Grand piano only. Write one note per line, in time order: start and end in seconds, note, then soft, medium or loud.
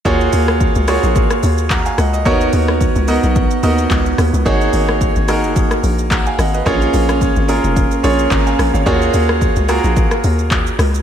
0.05 0.72 A#3 loud
0.05 0.73 F4 loud
0.05 0.73 F#4 loud
0.05 0.73 G#4 loud
0.05 0.73 C#5 loud
0.88 1.77 A#3 medium
0.88 1.77 F4 medium
0.88 1.77 F#4 medium
0.88 1.77 G#4 medium
0.88 1.77 C#5 loud
1.71 1.85 F#5 medium
1.71 1.85 A#5 medium
1.86 1.98 F5 medium
1.86 1.97 G#5 medium
1.98 2.12 D#5 medium
1.98 2.12 F#5 medium
2.13 2.39 D#5 medium
2.25 2.93 B3 loud
2.25 2.93 D#4 loud
2.25 2.93 F#4 loud
2.25 2.93 A#4 loud
2.25 2.93 C#5 loud
3.08 3.53 B3 medium
3.08 3.53 D#4 medium
3.08 3.53 F#4 medium
3.08 3.53 A#4 medium
3.08 3.54 D#5 loud
3.63 4.30 B3 medium
3.63 4.30 D#4 medium
3.63 4.30 F#4 medium
3.63 4.31 A#4 medium
3.63 4.31 D#5 loud
4.45 5.13 A#3 loud
4.45 5.13 D#4 loud
4.45 5.13 F#4 loud
4.45 5.13 G#4 loud
4.45 5.13 C#5 loud
5.28 6.17 A#3 medium
5.28 6.17 D#4 medium
5.28 6.17 F#4 medium
5.28 6.17 G#4 medium
5.28 5.84 A#4 loud
6.11 6.26 F#5 medium
6.11 6.25 A#5 medium
6.26 6.38 F5 medium
6.26 6.38 G#5 medium
6.39 6.53 D#5 medium
6.39 6.53 F#5 medium
6.54 6.80 B4 medium
6.54 6.80 D#5 medium
6.65 7.33 A#3 loud
6.65 7.33 C#4 loud
6.65 7.33 F4 loud
6.65 7.33 G#4 loud
6.65 7.33 C#5 loud
7.48 7.93 A#3 medium
7.48 7.94 C#4 medium
7.48 7.94 F4 medium
7.48 7.94 G#4 medium
7.48 7.94 A#4 loud
8.03 8.71 A#3 medium
8.03 8.71 C#4 medium
8.03 8.71 F4 medium
8.03 8.71 G#4 medium
8.03 8.31 C#5 loud
8.31 8.46 A#5 medium
8.46 8.73 F5 medium
8.46 8.72 G#5 medium
8.74 8.85 C#5 medium
8.74 9.00 F5 medium
8.86 9.53 A#3 loud
8.86 9.53 F4 loud
8.86 9.54 F#4 loud
8.86 9.54 G#4 loud
8.86 9.54 C#5 loud
9.68 10.57 A#3 medium
9.68 10.57 F4 medium
9.68 10.57 F#4 medium
9.68 10.58 G#4 medium
9.68 10.58 A#4 loud